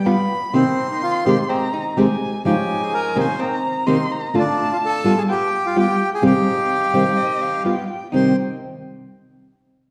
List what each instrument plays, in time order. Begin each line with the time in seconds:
0.05 nylon-string guitar G3 B3 F4, bandoneon G3 B3 F4, hollow-body jazz guitar B3, violin B5
0.53 nylon-string guitar C3 D#3 A#3 C4 G4, bandoneon A#3 C4 D#4, violin C6
0.91 bandoneon D#4
1.03 bandoneon F4
1.24 nylon-string guitar C3 D#3 G#3 C4 G4, bandoneon A#3 C4 D#4 G4
1.48 bandoneon C3 G#3 C4 G4, hollow-body jazz guitar C4, violin A#5
1.74 hollow-body jazz guitar D#4
1.91 violin A#5
1.96 bandoneon C3 G#3 C4 G4, nylon-string guitar C3 D#3 G#3 C4 G4, hollow-body jazz guitar G4, violin G#5
2.44 nylon-string guitar C#3 F3 G#3 D#4 F4, bandoneon F3 C#4 D#4 G4, violin G#5
2.82 bandoneon G#4
2.94 bandoneon A#4
3.15 nylon-string guitar C3 D#3 A#3 C4 G4, bandoneon F3 C#4 D#4
3.20 bandoneon C5
3.39 bandoneon A#3 C4 D#4, hollow-body jazz guitar C4, violin A#5
3.87 nylon-string guitar C3 D#3 A#3 C4 G4, bandoneon A#3 C4 D#4, hollow-body jazz guitar D#4, violin C6
4.12 violin A#5
4.34 nylon-string guitar D3 A3 D4 F4, bandoneon A3 D4 F4, violin A5
4.39 bandoneon D4
4.73 bandoneon F4
4.85 bandoneon A4
5.04 nylon-string guitar G3 B3 F4, bandoneon A3 D4 F4
5.18 bandoneon G#4
5.28 bandoneon B3 F4 G4, violin G5
5.66 bandoneon F4
5.76 nylon-string guitar G3 B3 F4, bandoneon B3 F4 G4
6.14 bandoneon G#4
6.22 nylon-string guitar C3 D#3 G3 C4 G4, bandoneon C4 D#4 G4, violin F5
6.26 bandoneon G4
6.93 nylon-string guitar C3 D#3 G3 C4 G4, bandoneon C4 D#4 G4
7.17 violin D#5
7.42 violin F5
7.64 nylon-string guitar G3 B3 F4, bandoneon B3 F4 G4, violin G5
7.88 violin G5
8.12 nylon-string guitar C3 D#3 G3 C4 G4, bandoneon C4 D#4 G4 C5, hollow-body jazz guitar D#4, violin G5